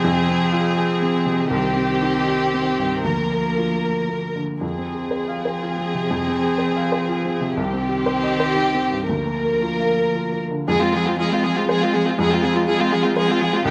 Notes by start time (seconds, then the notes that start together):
Already playing: C3 F3 C4 G#4
0.04 F2
0.29 C4
0.52 F4
0.77 G#4
1.02 C4
1.26 C3
1.51 C2 D#3 C4 G4
1.76 C4
2.02 D#4
2.28 G4
2.54 C4
2.78 G2
3.04 D2 F3 A#3 A#4
3.31 A#3
3.58 F4
3.84 A#4
4.09 A#3
4.36 D3
4.61 F2 F3 C4 G#4
4.78 C4
4.94 G#4
5.11 C5
5.28 F5
5.45 C5
5.62 F4
5.78 C4
5.94 C3
6.11 F2
6.27 C4
6.43 G#4
6.58 C5
6.76 F5
6.92 C5
7.08 F4
7.25 C4
7.41 C3
7.57 C2 D#3 C4 G4
7.73 C4
7.89 G4
8.06 C5
8.23 D#5
8.40 C5
8.56 D#4
8.74 C4
8.91 G2
9.08 D2 F3 A#3 A#4
9.26 A#3
9.45 A#4
9.62 F4
9.80 F5
9.98 A#4
10.15 F4
10.33 A#3
10.51 D3
10.65 F2 F3 G#3 C4 G#4 F5
10.80 G#3 C4 F4
10.93 F3 G#3 C4 G#4
11.06 G#3 C4 F4
11.18 F3 G#3 F4 G#4
11.31 G#3 C4 F4
11.44 F3 G#3 G#4
11.56 G#3 C4 F4
11.68 F3 G#3 G#4 C5
11.81 G#3 C4 F4
11.93 F3 G#3 G#4
12.06 G#3 C4 F4
12.17 F2 F3 G#3 G#4
12.30 G#3 C4 F4
12.42 F3 G#3 C4 G#4
12.54 G#3 C4 F4
12.67 F3 G#3 F4 G#4
12.79 G#3 C4 F4
12.91 F3 G#3 G#4
13.04 G#3 C4 F4
13.16 F3 G#3 G#4 C5
13.28 G#3 C4 F4
13.41 F3 G#3 G#4
13.52 G#3 C4 F4
13.64 C2 D#3 D#4 G4 D#5